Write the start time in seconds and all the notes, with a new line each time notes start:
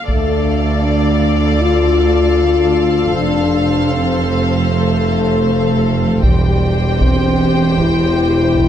0.07 D2 A3 A4 D5 F5, taiko
0.84 D4
1.61 F4
3.15 F1 F2 D4 C5
3.92 C4
4.69 A3
6.22 E1 E2 G3 G4 C5 G5, taiko
7.01 C4, taiko
7.77 E4, taiko
8.55 taiko